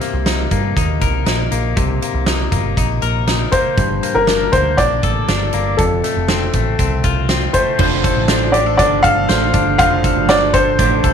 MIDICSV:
0, 0, Header, 1, 6, 480
1, 0, Start_track
1, 0, Tempo, 501253
1, 1695, Time_signature, 4, 2, 24, 8
1, 10661, End_track
2, 0, Start_track
2, 0, Title_t, "Upright piano"
2, 0, Program_c, 0, 0
2, 3368, Note_on_c, 0, 72, 79
2, 3970, Note_on_c, 0, 70, 92
2, 3993, Note_off_c, 0, 72, 0
2, 4330, Note_on_c, 0, 72, 82
2, 4347, Note_off_c, 0, 70, 0
2, 4572, Note_on_c, 0, 74, 88
2, 4583, Note_off_c, 0, 72, 0
2, 5527, Note_on_c, 0, 69, 69
2, 5567, Note_off_c, 0, 74, 0
2, 6937, Note_off_c, 0, 69, 0
2, 7214, Note_on_c, 0, 72, 73
2, 8160, Note_on_c, 0, 74, 82
2, 8206, Note_off_c, 0, 72, 0
2, 8388, Note_off_c, 0, 74, 0
2, 8403, Note_on_c, 0, 74, 89
2, 8643, Note_on_c, 0, 77, 115
2, 8659, Note_off_c, 0, 74, 0
2, 9355, Note_off_c, 0, 77, 0
2, 9370, Note_on_c, 0, 77, 101
2, 9852, Note_on_c, 0, 74, 101
2, 9867, Note_off_c, 0, 77, 0
2, 10088, Note_on_c, 0, 72, 90
2, 10101, Note_off_c, 0, 74, 0
2, 10661, Note_off_c, 0, 72, 0
2, 10661, End_track
3, 0, Start_track
3, 0, Title_t, "Clean electric guitar"
3, 0, Program_c, 1, 27
3, 0, Note_on_c, 1, 48, 65
3, 10, Note_on_c, 1, 58, 47
3, 252, Note_on_c, 1, 63, 53
3, 487, Note_off_c, 1, 58, 0
3, 491, Note_on_c, 1, 58, 52
3, 722, Note_off_c, 1, 63, 0
3, 733, Note_on_c, 1, 63, 60
3, 971, Note_on_c, 1, 70, 59
3, 1197, Note_off_c, 1, 63, 0
3, 1208, Note_on_c, 1, 63, 51
3, 1448, Note_off_c, 1, 58, 0
3, 1451, Note_on_c, 1, 58, 49
3, 1680, Note_off_c, 1, 48, 0
3, 1691, Note_on_c, 1, 48, 70
3, 1933, Note_off_c, 1, 58, 0
3, 1936, Note_on_c, 1, 58, 49
3, 2164, Note_off_c, 1, 63, 0
3, 2175, Note_on_c, 1, 63, 49
3, 2407, Note_off_c, 1, 58, 0
3, 2411, Note_on_c, 1, 58, 52
3, 2643, Note_off_c, 1, 63, 0
3, 2655, Note_on_c, 1, 63, 58
3, 2891, Note_off_c, 1, 70, 0
3, 2895, Note_on_c, 1, 70, 58
3, 3124, Note_off_c, 1, 63, 0
3, 3135, Note_on_c, 1, 63, 50
3, 3375, Note_off_c, 1, 58, 0
3, 3379, Note_on_c, 1, 58, 49
3, 3614, Note_on_c, 1, 43, 70
3, 3617, Note_off_c, 1, 48, 0
3, 3666, Note_off_c, 1, 63, 0
3, 3666, Note_off_c, 1, 70, 0
3, 3667, Note_off_c, 1, 58, 0
3, 3859, Note_on_c, 1, 58, 52
3, 4096, Note_on_c, 1, 62, 53
3, 4328, Note_off_c, 1, 58, 0
3, 4340, Note_on_c, 1, 58, 52
3, 4569, Note_off_c, 1, 62, 0
3, 4581, Note_on_c, 1, 62, 60
3, 4823, Note_on_c, 1, 69, 60
3, 5050, Note_off_c, 1, 62, 0
3, 5061, Note_on_c, 1, 62, 57
3, 5293, Note_off_c, 1, 58, 0
3, 5304, Note_on_c, 1, 58, 57
3, 5538, Note_off_c, 1, 43, 0
3, 5542, Note_on_c, 1, 41, 65
3, 5590, Note_off_c, 1, 62, 0
3, 5591, Note_off_c, 1, 58, 0
3, 5782, Note_on_c, 1, 57, 51
3, 6022, Note_on_c, 1, 60, 54
3, 6262, Note_off_c, 1, 57, 0
3, 6266, Note_on_c, 1, 57, 52
3, 6499, Note_off_c, 1, 60, 0
3, 6503, Note_on_c, 1, 60, 58
3, 6738, Note_off_c, 1, 69, 0
3, 6742, Note_on_c, 1, 65, 59
3, 6977, Note_off_c, 1, 60, 0
3, 6981, Note_on_c, 1, 60, 53
3, 7219, Note_off_c, 1, 57, 0
3, 7223, Note_on_c, 1, 57, 57
3, 7460, Note_on_c, 1, 53, 72
3, 7461, Note_off_c, 1, 65, 0
3, 7463, Note_off_c, 1, 41, 0
3, 7465, Note_on_c, 1, 72, 61
3, 7695, Note_off_c, 1, 60, 0
3, 7698, Note_on_c, 1, 69, 56
3, 7936, Note_off_c, 1, 57, 0
3, 7940, Note_on_c, 1, 62, 60
3, 8171, Note_off_c, 1, 69, 0
3, 8174, Note_on_c, 1, 67, 54
3, 8295, Note_off_c, 1, 67, 0
3, 8295, Note_on_c, 1, 69, 48
3, 8411, Note_off_c, 1, 62, 0
3, 8415, Note_on_c, 1, 62, 64
3, 8642, Note_off_c, 1, 69, 0
3, 8654, Note_on_c, 1, 69, 62
3, 8890, Note_off_c, 1, 72, 0
3, 8894, Note_on_c, 1, 72, 64
3, 9129, Note_off_c, 1, 62, 0
3, 9133, Note_on_c, 1, 62, 55
3, 9358, Note_off_c, 1, 53, 0
3, 9370, Note_on_c, 1, 53, 78
3, 9373, Note_off_c, 1, 72, 0
3, 9377, Note_on_c, 1, 72, 62
3, 9610, Note_off_c, 1, 69, 0
3, 9613, Note_on_c, 1, 69, 56
3, 9847, Note_off_c, 1, 62, 0
3, 9851, Note_on_c, 1, 62, 60
3, 10087, Note_off_c, 1, 69, 0
3, 10091, Note_on_c, 1, 69, 60
3, 10328, Note_off_c, 1, 62, 0
3, 10331, Note_on_c, 1, 62, 70
3, 10566, Note_off_c, 1, 69, 0
3, 10570, Note_on_c, 1, 69, 60
3, 10661, Note_off_c, 1, 53, 0
3, 10661, Note_off_c, 1, 62, 0
3, 10661, Note_off_c, 1, 69, 0
3, 10661, Note_off_c, 1, 72, 0
3, 10661, End_track
4, 0, Start_track
4, 0, Title_t, "Clean electric guitar"
4, 0, Program_c, 2, 27
4, 7457, Note_on_c, 2, 53, 65
4, 7458, Note_on_c, 2, 57, 68
4, 7464, Note_on_c, 2, 62, 73
4, 7468, Note_on_c, 2, 69, 73
4, 7468, Note_on_c, 2, 72, 72
4, 7688, Note_off_c, 2, 72, 0
4, 7699, Note_off_c, 2, 69, 0
4, 7700, Note_off_c, 2, 53, 0
4, 7700, Note_off_c, 2, 57, 0
4, 7700, Note_on_c, 2, 72, 45
4, 7703, Note_off_c, 2, 62, 0
4, 7711, Note_on_c, 2, 69, 43
4, 7723, Note_on_c, 2, 62, 38
4, 7938, Note_off_c, 2, 62, 0
4, 7941, Note_off_c, 2, 72, 0
4, 7943, Note_on_c, 2, 57, 64
4, 7946, Note_off_c, 2, 69, 0
4, 7949, Note_on_c, 2, 62, 62
4, 7960, Note_on_c, 2, 69, 67
4, 7962, Note_on_c, 2, 72, 69
4, 8170, Note_off_c, 2, 72, 0
4, 8180, Note_off_c, 2, 69, 0
4, 8181, Note_on_c, 2, 72, 49
4, 8182, Note_off_c, 2, 57, 0
4, 8185, Note_off_c, 2, 62, 0
4, 8191, Note_on_c, 2, 69, 43
4, 8202, Note_on_c, 2, 62, 37
4, 8416, Note_off_c, 2, 62, 0
4, 8421, Note_off_c, 2, 69, 0
4, 8421, Note_off_c, 2, 72, 0
4, 8421, Note_on_c, 2, 53, 77
4, 8424, Note_on_c, 2, 57, 78
4, 8427, Note_on_c, 2, 62, 84
4, 8432, Note_on_c, 2, 69, 80
4, 8433, Note_on_c, 2, 72, 82
4, 8890, Note_off_c, 2, 57, 0
4, 8894, Note_on_c, 2, 57, 59
4, 8900, Note_off_c, 2, 53, 0
4, 8900, Note_off_c, 2, 62, 0
4, 8904, Note_on_c, 2, 62, 57
4, 8907, Note_off_c, 2, 69, 0
4, 8911, Note_off_c, 2, 72, 0
4, 8911, Note_on_c, 2, 69, 61
4, 8915, Note_on_c, 2, 72, 64
4, 9374, Note_on_c, 2, 53, 75
4, 9379, Note_off_c, 2, 57, 0
4, 9381, Note_off_c, 2, 62, 0
4, 9382, Note_off_c, 2, 69, 0
4, 9382, Note_on_c, 2, 57, 78
4, 9384, Note_on_c, 2, 62, 77
4, 9386, Note_on_c, 2, 69, 87
4, 9387, Note_off_c, 2, 72, 0
4, 9391, Note_on_c, 2, 72, 81
4, 9850, Note_off_c, 2, 57, 0
4, 9854, Note_off_c, 2, 53, 0
4, 9854, Note_on_c, 2, 57, 59
4, 9858, Note_off_c, 2, 62, 0
4, 9861, Note_on_c, 2, 62, 60
4, 9863, Note_off_c, 2, 69, 0
4, 9867, Note_on_c, 2, 69, 65
4, 9869, Note_off_c, 2, 72, 0
4, 9873, Note_on_c, 2, 72, 68
4, 10074, Note_off_c, 2, 72, 0
4, 10085, Note_off_c, 2, 69, 0
4, 10085, Note_on_c, 2, 72, 53
4, 10095, Note_off_c, 2, 57, 0
4, 10097, Note_on_c, 2, 69, 46
4, 10098, Note_off_c, 2, 62, 0
4, 10111, Note_on_c, 2, 62, 42
4, 10329, Note_off_c, 2, 62, 0
4, 10330, Note_off_c, 2, 69, 0
4, 10330, Note_off_c, 2, 72, 0
4, 10333, Note_on_c, 2, 53, 75
4, 10336, Note_on_c, 2, 57, 84
4, 10341, Note_on_c, 2, 62, 82
4, 10342, Note_on_c, 2, 69, 89
4, 10342, Note_on_c, 2, 72, 87
4, 10661, Note_off_c, 2, 53, 0
4, 10661, Note_off_c, 2, 57, 0
4, 10661, Note_off_c, 2, 62, 0
4, 10661, Note_off_c, 2, 69, 0
4, 10661, Note_off_c, 2, 72, 0
4, 10661, End_track
5, 0, Start_track
5, 0, Title_t, "Picked electric bass"
5, 0, Program_c, 3, 34
5, 128, Note_on_c, 3, 36, 83
5, 436, Note_off_c, 3, 36, 0
5, 491, Note_on_c, 3, 43, 66
5, 696, Note_off_c, 3, 43, 0
5, 733, Note_on_c, 3, 39, 82
5, 937, Note_off_c, 3, 39, 0
5, 973, Note_on_c, 3, 36, 79
5, 1177, Note_off_c, 3, 36, 0
5, 1210, Note_on_c, 3, 34, 80
5, 1416, Note_off_c, 3, 34, 0
5, 1451, Note_on_c, 3, 34, 78
5, 1657, Note_off_c, 3, 34, 0
5, 1695, Note_on_c, 3, 36, 81
5, 1900, Note_off_c, 3, 36, 0
5, 2050, Note_on_c, 3, 36, 82
5, 2359, Note_off_c, 3, 36, 0
5, 2414, Note_on_c, 3, 31, 78
5, 2620, Note_off_c, 3, 31, 0
5, 2654, Note_on_c, 3, 34, 79
5, 2860, Note_off_c, 3, 34, 0
5, 2889, Note_on_c, 3, 34, 81
5, 3302, Note_off_c, 3, 34, 0
5, 3614, Note_on_c, 3, 31, 95
5, 3820, Note_off_c, 3, 31, 0
5, 3975, Note_on_c, 3, 31, 80
5, 4284, Note_off_c, 3, 31, 0
5, 4336, Note_on_c, 3, 38, 72
5, 4542, Note_off_c, 3, 38, 0
5, 4578, Note_on_c, 3, 34, 74
5, 4784, Note_off_c, 3, 34, 0
5, 4818, Note_on_c, 3, 33, 73
5, 5024, Note_off_c, 3, 33, 0
5, 5056, Note_on_c, 3, 31, 83
5, 5262, Note_off_c, 3, 31, 0
5, 5300, Note_on_c, 3, 31, 86
5, 5505, Note_off_c, 3, 31, 0
5, 5541, Note_on_c, 3, 29, 92
5, 5746, Note_off_c, 3, 29, 0
5, 5905, Note_on_c, 3, 29, 83
5, 6210, Note_off_c, 3, 29, 0
5, 6262, Note_on_c, 3, 33, 73
5, 6466, Note_off_c, 3, 33, 0
5, 6502, Note_on_c, 3, 36, 74
5, 6706, Note_off_c, 3, 36, 0
5, 6742, Note_on_c, 3, 36, 75
5, 7150, Note_off_c, 3, 36, 0
5, 7461, Note_on_c, 3, 29, 96
5, 7768, Note_off_c, 3, 29, 0
5, 7820, Note_on_c, 3, 33, 82
5, 8390, Note_off_c, 3, 33, 0
5, 8416, Note_on_c, 3, 31, 90
5, 8622, Note_off_c, 3, 31, 0
5, 8657, Note_on_c, 3, 31, 82
5, 8862, Note_off_c, 3, 31, 0
5, 8899, Note_on_c, 3, 33, 89
5, 9103, Note_off_c, 3, 33, 0
5, 9135, Note_on_c, 3, 31, 95
5, 9340, Note_off_c, 3, 31, 0
5, 9375, Note_on_c, 3, 29, 108
5, 9682, Note_off_c, 3, 29, 0
5, 9729, Note_on_c, 3, 31, 84
5, 10301, Note_off_c, 3, 31, 0
5, 10331, Note_on_c, 3, 33, 89
5, 10536, Note_off_c, 3, 33, 0
5, 10572, Note_on_c, 3, 36, 93
5, 10661, Note_off_c, 3, 36, 0
5, 10661, End_track
6, 0, Start_track
6, 0, Title_t, "Drums"
6, 11, Note_on_c, 9, 38, 32
6, 12, Note_on_c, 9, 42, 64
6, 106, Note_off_c, 9, 38, 0
6, 108, Note_off_c, 9, 42, 0
6, 249, Note_on_c, 9, 38, 93
6, 257, Note_on_c, 9, 42, 64
6, 345, Note_off_c, 9, 38, 0
6, 353, Note_off_c, 9, 42, 0
6, 489, Note_on_c, 9, 42, 73
6, 491, Note_on_c, 9, 36, 74
6, 585, Note_off_c, 9, 42, 0
6, 587, Note_off_c, 9, 36, 0
6, 734, Note_on_c, 9, 36, 86
6, 739, Note_on_c, 9, 42, 73
6, 829, Note_off_c, 9, 36, 0
6, 835, Note_off_c, 9, 42, 0
6, 970, Note_on_c, 9, 42, 60
6, 973, Note_on_c, 9, 36, 80
6, 1066, Note_off_c, 9, 42, 0
6, 1068, Note_off_c, 9, 36, 0
6, 1209, Note_on_c, 9, 42, 66
6, 1212, Note_on_c, 9, 38, 77
6, 1305, Note_off_c, 9, 42, 0
6, 1308, Note_off_c, 9, 38, 0
6, 1452, Note_on_c, 9, 42, 63
6, 1547, Note_off_c, 9, 42, 0
6, 1695, Note_on_c, 9, 36, 102
6, 1695, Note_on_c, 9, 42, 71
6, 1791, Note_off_c, 9, 36, 0
6, 1791, Note_off_c, 9, 42, 0
6, 1937, Note_on_c, 9, 42, 70
6, 2033, Note_off_c, 9, 42, 0
6, 2169, Note_on_c, 9, 38, 102
6, 2177, Note_on_c, 9, 42, 66
6, 2265, Note_off_c, 9, 38, 0
6, 2273, Note_off_c, 9, 42, 0
6, 2413, Note_on_c, 9, 42, 77
6, 2414, Note_on_c, 9, 36, 74
6, 2509, Note_off_c, 9, 42, 0
6, 2510, Note_off_c, 9, 36, 0
6, 2655, Note_on_c, 9, 36, 80
6, 2659, Note_on_c, 9, 42, 80
6, 2751, Note_off_c, 9, 36, 0
6, 2754, Note_off_c, 9, 42, 0
6, 2891, Note_on_c, 9, 42, 57
6, 2987, Note_off_c, 9, 42, 0
6, 3135, Note_on_c, 9, 42, 64
6, 3138, Note_on_c, 9, 38, 75
6, 3231, Note_off_c, 9, 42, 0
6, 3234, Note_off_c, 9, 38, 0
6, 3373, Note_on_c, 9, 42, 66
6, 3376, Note_on_c, 9, 36, 83
6, 3468, Note_off_c, 9, 42, 0
6, 3472, Note_off_c, 9, 36, 0
6, 3613, Note_on_c, 9, 42, 68
6, 3616, Note_on_c, 9, 36, 101
6, 3709, Note_off_c, 9, 42, 0
6, 3712, Note_off_c, 9, 36, 0
6, 3859, Note_on_c, 9, 42, 73
6, 3955, Note_off_c, 9, 42, 0
6, 4092, Note_on_c, 9, 38, 94
6, 4101, Note_on_c, 9, 42, 64
6, 4188, Note_off_c, 9, 38, 0
6, 4196, Note_off_c, 9, 42, 0
6, 4333, Note_on_c, 9, 42, 76
6, 4337, Note_on_c, 9, 36, 77
6, 4429, Note_off_c, 9, 42, 0
6, 4433, Note_off_c, 9, 36, 0
6, 4578, Note_on_c, 9, 36, 83
6, 4579, Note_on_c, 9, 42, 80
6, 4674, Note_off_c, 9, 36, 0
6, 4675, Note_off_c, 9, 42, 0
6, 4815, Note_on_c, 9, 42, 60
6, 4819, Note_on_c, 9, 36, 76
6, 4911, Note_off_c, 9, 42, 0
6, 4915, Note_off_c, 9, 36, 0
6, 5059, Note_on_c, 9, 42, 67
6, 5062, Note_on_c, 9, 38, 84
6, 5155, Note_off_c, 9, 42, 0
6, 5158, Note_off_c, 9, 38, 0
6, 5292, Note_on_c, 9, 42, 66
6, 5387, Note_off_c, 9, 42, 0
6, 5539, Note_on_c, 9, 42, 70
6, 5542, Note_on_c, 9, 36, 104
6, 5635, Note_off_c, 9, 42, 0
6, 5637, Note_off_c, 9, 36, 0
6, 5782, Note_on_c, 9, 38, 33
6, 5784, Note_on_c, 9, 42, 73
6, 5877, Note_off_c, 9, 38, 0
6, 5879, Note_off_c, 9, 42, 0
6, 6018, Note_on_c, 9, 38, 95
6, 6027, Note_on_c, 9, 42, 67
6, 6114, Note_off_c, 9, 38, 0
6, 6123, Note_off_c, 9, 42, 0
6, 6257, Note_on_c, 9, 42, 75
6, 6261, Note_on_c, 9, 36, 76
6, 6352, Note_off_c, 9, 42, 0
6, 6357, Note_off_c, 9, 36, 0
6, 6501, Note_on_c, 9, 42, 75
6, 6502, Note_on_c, 9, 36, 78
6, 6597, Note_off_c, 9, 42, 0
6, 6598, Note_off_c, 9, 36, 0
6, 6737, Note_on_c, 9, 42, 61
6, 6742, Note_on_c, 9, 36, 80
6, 6833, Note_off_c, 9, 42, 0
6, 6838, Note_off_c, 9, 36, 0
6, 6979, Note_on_c, 9, 42, 69
6, 6981, Note_on_c, 9, 38, 81
6, 7074, Note_off_c, 9, 42, 0
6, 7077, Note_off_c, 9, 38, 0
6, 7217, Note_on_c, 9, 42, 66
6, 7221, Note_on_c, 9, 36, 74
6, 7312, Note_off_c, 9, 42, 0
6, 7317, Note_off_c, 9, 36, 0
6, 7457, Note_on_c, 9, 49, 84
6, 7462, Note_on_c, 9, 36, 109
6, 7553, Note_off_c, 9, 49, 0
6, 7558, Note_off_c, 9, 36, 0
6, 7701, Note_on_c, 9, 36, 87
6, 7703, Note_on_c, 9, 42, 75
6, 7797, Note_off_c, 9, 36, 0
6, 7798, Note_off_c, 9, 42, 0
6, 7931, Note_on_c, 9, 38, 111
6, 7939, Note_on_c, 9, 42, 72
6, 8027, Note_off_c, 9, 38, 0
6, 8035, Note_off_c, 9, 42, 0
6, 8176, Note_on_c, 9, 42, 81
6, 8271, Note_off_c, 9, 42, 0
6, 8419, Note_on_c, 9, 36, 88
6, 8422, Note_on_c, 9, 42, 86
6, 8514, Note_off_c, 9, 36, 0
6, 8518, Note_off_c, 9, 42, 0
6, 8656, Note_on_c, 9, 42, 62
6, 8658, Note_on_c, 9, 36, 85
6, 8751, Note_off_c, 9, 42, 0
6, 8754, Note_off_c, 9, 36, 0
6, 8897, Note_on_c, 9, 42, 75
6, 8900, Note_on_c, 9, 38, 89
6, 8993, Note_off_c, 9, 42, 0
6, 8996, Note_off_c, 9, 38, 0
6, 9132, Note_on_c, 9, 42, 70
6, 9136, Note_on_c, 9, 36, 90
6, 9227, Note_off_c, 9, 42, 0
6, 9232, Note_off_c, 9, 36, 0
6, 9375, Note_on_c, 9, 42, 79
6, 9376, Note_on_c, 9, 36, 102
6, 9471, Note_off_c, 9, 42, 0
6, 9472, Note_off_c, 9, 36, 0
6, 9616, Note_on_c, 9, 36, 95
6, 9618, Note_on_c, 9, 42, 80
6, 9712, Note_off_c, 9, 36, 0
6, 9714, Note_off_c, 9, 42, 0
6, 9851, Note_on_c, 9, 38, 102
6, 9860, Note_on_c, 9, 42, 70
6, 9947, Note_off_c, 9, 38, 0
6, 9956, Note_off_c, 9, 42, 0
6, 10090, Note_on_c, 9, 42, 87
6, 10092, Note_on_c, 9, 36, 79
6, 10185, Note_off_c, 9, 42, 0
6, 10188, Note_off_c, 9, 36, 0
6, 10332, Note_on_c, 9, 36, 92
6, 10333, Note_on_c, 9, 42, 91
6, 10428, Note_off_c, 9, 36, 0
6, 10429, Note_off_c, 9, 42, 0
6, 10569, Note_on_c, 9, 42, 62
6, 10572, Note_on_c, 9, 36, 84
6, 10661, Note_off_c, 9, 36, 0
6, 10661, Note_off_c, 9, 42, 0
6, 10661, End_track
0, 0, End_of_file